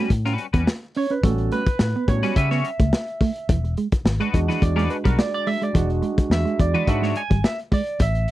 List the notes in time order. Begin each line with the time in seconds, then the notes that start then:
Already playing: F#4 B4
0.00 G3 C#4
0.10 A2, kick, closed hi-hat
0.25 G3 C#4 F#4 B4, snare, closed hi-hat
0.38 muted clean electric guitar stroke, closed hi-hat
0.53 E2 G3 B3 C#4 F#4 B4, kick, closed hi-hat
0.67 muted clean electric guitar stroke, snare
0.95 C#4 C#5, open hi-hat
1.10 C#4 B4, closed hi-hat
1.23 A1 G3 A3 B3 C#4 F#4 A4, kick, closed hi-hat
1.38 muted clean electric guitar stroke, closed hi-hat
1.52 A3 B4, closed hi-hat
1.66 muted fingered electric bass stroke, kick, closed hi-hat
1.79 A2, snare
1.96 B3
2.08 A2 G3 B3 C#4 F#4 C#5, muted clean electric guitar stroke, kick, closed hi-hat
2.23 G3 C#4 F#4 B4, snare, closed hi-hat
2.36 C#3 G3 C#4 F#4 B4 E5, kick, closed hi-hat
2.51 G3 B3 C#4 F#4 C#5, snare, closed hi-hat
2.64 muted clean electric guitar stroke, closed hi-hat
2.79 C#2 A3, kick, closed hi-hat
2.93 snare
3.08 closed hi-hat
3.21 A3, kick, open hi-hat
3.36 closed hi-hat
3.49 E1 E3, kick, closed hi-hat
3.64 muted clean electric guitar stroke, closed hi-hat
3.77 G#3, closed hi-hat
3.92 muted fingered electric bass stroke, kick, closed hi-hat
4.05 G#1, snare
4.20 G#3 D4 F#4 B4, closed hi-hat
4.33 E2 G#3 D4 F#4, muted clean electric guitar stroke, kick, closed hi-hat
4.48 E3 G#3 D4 F#4 B4, snare, closed hi-hat
4.62 E2 D5, kick, closed hi-hat
4.76 G#3 D4 F#4 B4 D5, snare
4.89 B4, muted clean electric guitar stroke, closed hi-hat
5.04 B1 G3 G#3 D4 F#4 A#4 B4, kick, closed hi-hat
5.17 D5, muted clean electric guitar stroke, snare
5.34 D5
5.47 G#3 E5, open hi-hat
5.62 G#3 D5, closed hi-hat
5.74 E1 E3 G#3 D4 F#4, kick, closed hi-hat
5.89 muted clean electric guitar stroke, closed hi-hat
6.02 G#3, closed hi-hat
6.18 muted fingered electric bass stroke, kick, closed hi-hat
6.30 E2 E5, snare
6.45 G#3, closed hi-hat
6.60 E2 D5, muted clean electric guitar stroke, kick, closed hi-hat
6.74 E3 G#3 D4 F#4 B4, closed hi-hat
6.87 G#2 G#3 D4 F#4 B4 E5, kick, closed hi-hat
7.02 G#3 D4 F#4 C#5, snare
7.16 G#5, muted clean electric guitar stroke, closed hi-hat
7.30 G#1 G3, kick, closed hi-hat
7.44 E5, snare
7.59 closed hi-hat
7.72 G#3 D5, kick, open hi-hat
7.87 closed hi-hat
7.99 A1 E5, kick, closed hi-hat
8.15 closed hi-hat
8.28 closed hi-hat